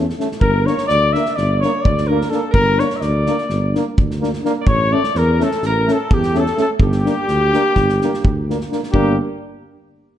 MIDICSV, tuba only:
0, 0, Header, 1, 2, 480
1, 0, Start_track
1, 0, Tempo, 474308
1, 406, Time_signature, 9, 3, 24, 8
1, 10304, End_track
2, 0, Start_track
2, 0, Title_t, "Tuba"
2, 0, Program_c, 0, 58
2, 0, Note_on_c, 0, 40, 83
2, 104, Note_off_c, 0, 40, 0
2, 421, Note_on_c, 0, 31, 106
2, 685, Note_off_c, 0, 31, 0
2, 903, Note_on_c, 0, 38, 89
2, 1169, Note_off_c, 0, 38, 0
2, 1390, Note_on_c, 0, 31, 95
2, 1655, Note_off_c, 0, 31, 0
2, 1872, Note_on_c, 0, 38, 89
2, 2253, Note_off_c, 0, 38, 0
2, 2568, Note_on_c, 0, 31, 104
2, 2835, Note_off_c, 0, 31, 0
2, 3054, Note_on_c, 0, 38, 93
2, 3322, Note_off_c, 0, 38, 0
2, 3538, Note_on_c, 0, 31, 91
2, 3806, Note_off_c, 0, 31, 0
2, 4029, Note_on_c, 0, 38, 67
2, 4410, Note_off_c, 0, 38, 0
2, 4724, Note_on_c, 0, 33, 95
2, 4991, Note_off_c, 0, 33, 0
2, 5209, Note_on_c, 0, 40, 97
2, 5478, Note_off_c, 0, 40, 0
2, 5687, Note_on_c, 0, 33, 87
2, 5959, Note_off_c, 0, 33, 0
2, 6185, Note_on_c, 0, 40, 82
2, 6567, Note_off_c, 0, 40, 0
2, 6882, Note_on_c, 0, 31, 103
2, 7150, Note_off_c, 0, 31, 0
2, 7373, Note_on_c, 0, 38, 87
2, 7641, Note_off_c, 0, 38, 0
2, 7856, Note_on_c, 0, 31, 94
2, 8125, Note_off_c, 0, 31, 0
2, 8342, Note_on_c, 0, 38, 72
2, 8726, Note_off_c, 0, 38, 0
2, 9041, Note_on_c, 0, 31, 101
2, 9283, Note_off_c, 0, 31, 0
2, 10304, End_track
0, 0, End_of_file